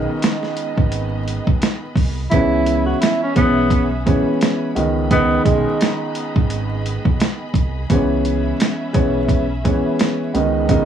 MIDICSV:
0, 0, Header, 1, 6, 480
1, 0, Start_track
1, 0, Key_signature, 4, "minor"
1, 0, Tempo, 697674
1, 1594, Time_signature, 4, 2, 24, 8
1, 7465, End_track
2, 0, Start_track
2, 0, Title_t, "String section"
2, 0, Program_c, 0, 48
2, 0, Note_on_c, 0, 59, 81
2, 0, Note_on_c, 0, 68, 70
2, 0, Note_on_c, 0, 75, 71
2, 0, Note_on_c, 0, 83, 81
2, 1562, Note_off_c, 0, 83, 0
2, 1564, Note_off_c, 0, 68, 0
2, 1568, Note_off_c, 0, 75, 0
2, 1569, Note_off_c, 0, 59, 0
2, 1582, Note_on_c, 0, 76, 74
2, 1583, Note_on_c, 0, 61, 76
2, 1583, Note_on_c, 0, 68, 69
2, 1583, Note_on_c, 0, 83, 81
2, 3251, Note_off_c, 0, 76, 0
2, 3252, Note_off_c, 0, 61, 0
2, 3252, Note_off_c, 0, 68, 0
2, 3265, Note_on_c, 0, 68, 70
2, 3265, Note_on_c, 0, 75, 69
2, 3266, Note_on_c, 0, 59, 79
2, 5408, Note_off_c, 0, 75, 0
2, 5409, Note_off_c, 0, 59, 0
2, 5426, Note_on_c, 0, 61, 79
2, 5426, Note_on_c, 0, 76, 74
2, 7093, Note_off_c, 0, 61, 0
2, 7093, Note_off_c, 0, 76, 0
2, 7111, Note_on_c, 0, 59, 81
2, 7112, Note_on_c, 0, 75, 70
2, 7465, Note_off_c, 0, 59, 0
2, 7465, Note_off_c, 0, 68, 0
2, 7465, Note_off_c, 0, 75, 0
2, 7465, Note_off_c, 0, 83, 0
2, 7465, End_track
3, 0, Start_track
3, 0, Title_t, "Tenor saxophone"
3, 0, Program_c, 1, 66
3, 1586, Note_on_c, 1, 64, 102
3, 1946, Note_off_c, 1, 64, 0
3, 1967, Note_on_c, 1, 66, 73
3, 2061, Note_off_c, 1, 66, 0
3, 2069, Note_on_c, 1, 64, 81
3, 2196, Note_off_c, 1, 64, 0
3, 2220, Note_on_c, 1, 61, 77
3, 2306, Note_off_c, 1, 61, 0
3, 2310, Note_on_c, 1, 59, 92
3, 2668, Note_off_c, 1, 59, 0
3, 3519, Note_on_c, 1, 59, 98
3, 3733, Note_off_c, 1, 59, 0
3, 3750, Note_on_c, 1, 56, 83
3, 4107, Note_off_c, 1, 56, 0
3, 7465, End_track
4, 0, Start_track
4, 0, Title_t, "Upright piano"
4, 0, Program_c, 2, 0
4, 0, Note_on_c, 2, 37, 85
4, 0, Note_on_c, 2, 51, 90
4, 0, Note_on_c, 2, 56, 85
4, 0, Note_on_c, 2, 59, 82
4, 0, Note_on_c, 2, 63, 107
4, 1236, Note_off_c, 2, 37, 0
4, 1238, Note_off_c, 2, 51, 0
4, 1239, Note_off_c, 2, 56, 0
4, 1240, Note_off_c, 2, 59, 0
4, 1241, Note_off_c, 2, 63, 0
4, 1600, Note_on_c, 2, 52, 92
4, 1604, Note_on_c, 2, 56, 84
4, 1606, Note_on_c, 2, 59, 90
4, 1611, Note_on_c, 2, 61, 107
4, 2268, Note_off_c, 2, 52, 0
4, 2270, Note_off_c, 2, 56, 0
4, 2272, Note_off_c, 2, 59, 0
4, 2274, Note_off_c, 2, 61, 0
4, 2306, Note_on_c, 2, 52, 89
4, 2310, Note_on_c, 2, 56, 86
4, 2313, Note_on_c, 2, 59, 95
4, 2316, Note_on_c, 2, 61, 104
4, 2655, Note_off_c, 2, 52, 0
4, 2657, Note_off_c, 2, 56, 0
4, 2659, Note_off_c, 2, 59, 0
4, 2660, Note_off_c, 2, 61, 0
4, 2793, Note_on_c, 2, 52, 94
4, 2797, Note_on_c, 2, 56, 89
4, 2800, Note_on_c, 2, 59, 89
4, 2803, Note_on_c, 2, 61, 100
4, 3241, Note_off_c, 2, 52, 0
4, 3243, Note_off_c, 2, 56, 0
4, 3245, Note_off_c, 2, 59, 0
4, 3246, Note_off_c, 2, 61, 0
4, 3270, Note_on_c, 2, 37, 78
4, 3273, Note_on_c, 2, 51, 77
4, 3274, Note_on_c, 2, 56, 70
4, 3278, Note_on_c, 2, 59, 76
4, 3280, Note_on_c, 2, 63, 89
4, 3496, Note_off_c, 2, 37, 0
4, 3497, Note_off_c, 2, 51, 0
4, 3498, Note_off_c, 2, 56, 0
4, 3500, Note_off_c, 2, 59, 0
4, 3501, Note_off_c, 2, 63, 0
4, 3513, Note_on_c, 2, 37, 84
4, 3516, Note_on_c, 2, 51, 88
4, 3518, Note_on_c, 2, 56, 82
4, 3521, Note_on_c, 2, 59, 83
4, 3524, Note_on_c, 2, 63, 109
4, 5076, Note_off_c, 2, 37, 0
4, 5077, Note_off_c, 2, 51, 0
4, 5078, Note_off_c, 2, 56, 0
4, 5080, Note_off_c, 2, 59, 0
4, 5081, Note_off_c, 2, 63, 0
4, 5441, Note_on_c, 2, 52, 95
4, 5444, Note_on_c, 2, 56, 87
4, 5448, Note_on_c, 2, 59, 90
4, 5451, Note_on_c, 2, 61, 105
4, 6109, Note_off_c, 2, 52, 0
4, 6110, Note_off_c, 2, 56, 0
4, 6112, Note_off_c, 2, 59, 0
4, 6114, Note_off_c, 2, 61, 0
4, 6145, Note_on_c, 2, 52, 90
4, 6149, Note_on_c, 2, 56, 87
4, 6152, Note_on_c, 2, 59, 94
4, 6155, Note_on_c, 2, 61, 107
4, 6495, Note_off_c, 2, 52, 0
4, 6497, Note_off_c, 2, 56, 0
4, 6498, Note_off_c, 2, 59, 0
4, 6499, Note_off_c, 2, 61, 0
4, 6635, Note_on_c, 2, 52, 93
4, 6638, Note_on_c, 2, 56, 88
4, 6642, Note_on_c, 2, 59, 87
4, 6645, Note_on_c, 2, 61, 97
4, 7082, Note_off_c, 2, 52, 0
4, 7083, Note_off_c, 2, 56, 0
4, 7086, Note_off_c, 2, 59, 0
4, 7087, Note_off_c, 2, 61, 0
4, 7113, Note_on_c, 2, 37, 79
4, 7115, Note_on_c, 2, 51, 80
4, 7118, Note_on_c, 2, 56, 71
4, 7120, Note_on_c, 2, 59, 74
4, 7123, Note_on_c, 2, 63, 89
4, 7337, Note_off_c, 2, 37, 0
4, 7338, Note_off_c, 2, 51, 0
4, 7340, Note_off_c, 2, 56, 0
4, 7341, Note_off_c, 2, 59, 0
4, 7342, Note_off_c, 2, 63, 0
4, 7355, Note_on_c, 2, 37, 85
4, 7357, Note_on_c, 2, 51, 87
4, 7360, Note_on_c, 2, 56, 84
4, 7362, Note_on_c, 2, 59, 82
4, 7365, Note_on_c, 2, 63, 108
4, 7465, Note_off_c, 2, 37, 0
4, 7465, Note_off_c, 2, 51, 0
4, 7465, Note_off_c, 2, 56, 0
4, 7465, Note_off_c, 2, 59, 0
4, 7465, Note_off_c, 2, 63, 0
4, 7465, End_track
5, 0, Start_track
5, 0, Title_t, "Fingered electric bass"
5, 0, Program_c, 3, 33
5, 534, Note_on_c, 3, 32, 91
5, 947, Note_off_c, 3, 32, 0
5, 1013, Note_on_c, 3, 35, 92
5, 1100, Note_off_c, 3, 35, 0
5, 1347, Note_on_c, 3, 36, 88
5, 1557, Note_off_c, 3, 36, 0
5, 1595, Note_on_c, 3, 37, 104
5, 2009, Note_off_c, 3, 37, 0
5, 2315, Note_on_c, 3, 35, 92
5, 2905, Note_off_c, 3, 35, 0
5, 3275, Note_on_c, 3, 37, 104
5, 3689, Note_off_c, 3, 37, 0
5, 3754, Note_on_c, 3, 35, 90
5, 3874, Note_off_c, 3, 35, 0
5, 4375, Note_on_c, 3, 32, 94
5, 4788, Note_off_c, 3, 32, 0
5, 4853, Note_on_c, 3, 35, 95
5, 4940, Note_off_c, 3, 35, 0
5, 5187, Note_on_c, 3, 36, 89
5, 5397, Note_off_c, 3, 36, 0
5, 5435, Note_on_c, 3, 37, 101
5, 5849, Note_off_c, 3, 37, 0
5, 6156, Note_on_c, 3, 35, 90
5, 6746, Note_off_c, 3, 35, 0
5, 7117, Note_on_c, 3, 37, 99
5, 7465, Note_off_c, 3, 37, 0
5, 7465, End_track
6, 0, Start_track
6, 0, Title_t, "Drums"
6, 154, Note_on_c, 9, 42, 119
6, 165, Note_on_c, 9, 38, 123
6, 223, Note_off_c, 9, 42, 0
6, 233, Note_off_c, 9, 38, 0
6, 295, Note_on_c, 9, 38, 39
6, 364, Note_off_c, 9, 38, 0
6, 390, Note_on_c, 9, 42, 84
6, 458, Note_off_c, 9, 42, 0
6, 533, Note_on_c, 9, 36, 91
6, 602, Note_off_c, 9, 36, 0
6, 631, Note_on_c, 9, 42, 81
6, 700, Note_off_c, 9, 42, 0
6, 878, Note_on_c, 9, 42, 73
6, 947, Note_off_c, 9, 42, 0
6, 1012, Note_on_c, 9, 36, 97
6, 1081, Note_off_c, 9, 36, 0
6, 1113, Note_on_c, 9, 42, 94
6, 1122, Note_on_c, 9, 38, 121
6, 1182, Note_off_c, 9, 42, 0
6, 1191, Note_off_c, 9, 38, 0
6, 1346, Note_on_c, 9, 36, 94
6, 1355, Note_on_c, 9, 46, 54
6, 1415, Note_off_c, 9, 36, 0
6, 1424, Note_off_c, 9, 46, 0
6, 1593, Note_on_c, 9, 42, 90
6, 1594, Note_on_c, 9, 36, 107
6, 1661, Note_off_c, 9, 42, 0
6, 1663, Note_off_c, 9, 36, 0
6, 1833, Note_on_c, 9, 42, 83
6, 1901, Note_off_c, 9, 42, 0
6, 2075, Note_on_c, 9, 42, 115
6, 2086, Note_on_c, 9, 38, 120
6, 2144, Note_off_c, 9, 42, 0
6, 2155, Note_off_c, 9, 38, 0
6, 2311, Note_on_c, 9, 42, 80
6, 2314, Note_on_c, 9, 36, 97
6, 2380, Note_off_c, 9, 42, 0
6, 2383, Note_off_c, 9, 36, 0
6, 2548, Note_on_c, 9, 36, 89
6, 2552, Note_on_c, 9, 42, 82
6, 2617, Note_off_c, 9, 36, 0
6, 2621, Note_off_c, 9, 42, 0
6, 2798, Note_on_c, 9, 42, 71
6, 2799, Note_on_c, 9, 36, 99
6, 2867, Note_off_c, 9, 42, 0
6, 2868, Note_off_c, 9, 36, 0
6, 3035, Note_on_c, 9, 42, 95
6, 3044, Note_on_c, 9, 38, 122
6, 3104, Note_off_c, 9, 42, 0
6, 3113, Note_off_c, 9, 38, 0
6, 3277, Note_on_c, 9, 42, 75
6, 3346, Note_off_c, 9, 42, 0
6, 3514, Note_on_c, 9, 42, 92
6, 3515, Note_on_c, 9, 36, 104
6, 3583, Note_off_c, 9, 42, 0
6, 3584, Note_off_c, 9, 36, 0
6, 3753, Note_on_c, 9, 36, 95
6, 3754, Note_on_c, 9, 42, 82
6, 3822, Note_off_c, 9, 36, 0
6, 3823, Note_off_c, 9, 42, 0
6, 3996, Note_on_c, 9, 42, 119
6, 4006, Note_on_c, 9, 38, 122
6, 4065, Note_off_c, 9, 42, 0
6, 4075, Note_off_c, 9, 38, 0
6, 4231, Note_on_c, 9, 42, 83
6, 4300, Note_off_c, 9, 42, 0
6, 4374, Note_on_c, 9, 36, 96
6, 4443, Note_off_c, 9, 36, 0
6, 4472, Note_on_c, 9, 42, 83
6, 4541, Note_off_c, 9, 42, 0
6, 4718, Note_on_c, 9, 42, 73
6, 4787, Note_off_c, 9, 42, 0
6, 4852, Note_on_c, 9, 36, 94
6, 4921, Note_off_c, 9, 36, 0
6, 4955, Note_on_c, 9, 42, 95
6, 4964, Note_on_c, 9, 38, 120
6, 5024, Note_off_c, 9, 42, 0
6, 5033, Note_off_c, 9, 38, 0
6, 5186, Note_on_c, 9, 36, 91
6, 5197, Note_on_c, 9, 42, 75
6, 5255, Note_off_c, 9, 36, 0
6, 5265, Note_off_c, 9, 42, 0
6, 5434, Note_on_c, 9, 42, 90
6, 5435, Note_on_c, 9, 36, 104
6, 5503, Note_off_c, 9, 36, 0
6, 5503, Note_off_c, 9, 42, 0
6, 5675, Note_on_c, 9, 42, 84
6, 5744, Note_off_c, 9, 42, 0
6, 5917, Note_on_c, 9, 42, 122
6, 5928, Note_on_c, 9, 38, 124
6, 5986, Note_off_c, 9, 42, 0
6, 5996, Note_off_c, 9, 38, 0
6, 6153, Note_on_c, 9, 42, 83
6, 6155, Note_on_c, 9, 36, 102
6, 6222, Note_off_c, 9, 42, 0
6, 6223, Note_off_c, 9, 36, 0
6, 6388, Note_on_c, 9, 36, 88
6, 6393, Note_on_c, 9, 42, 79
6, 6457, Note_off_c, 9, 36, 0
6, 6462, Note_off_c, 9, 42, 0
6, 6639, Note_on_c, 9, 36, 102
6, 6640, Note_on_c, 9, 42, 72
6, 6708, Note_off_c, 9, 36, 0
6, 6708, Note_off_c, 9, 42, 0
6, 6875, Note_on_c, 9, 42, 101
6, 6885, Note_on_c, 9, 38, 121
6, 6944, Note_off_c, 9, 42, 0
6, 6953, Note_off_c, 9, 38, 0
6, 7118, Note_on_c, 9, 42, 77
6, 7187, Note_off_c, 9, 42, 0
6, 7354, Note_on_c, 9, 42, 90
6, 7355, Note_on_c, 9, 36, 107
6, 7423, Note_off_c, 9, 42, 0
6, 7424, Note_off_c, 9, 36, 0
6, 7465, End_track
0, 0, End_of_file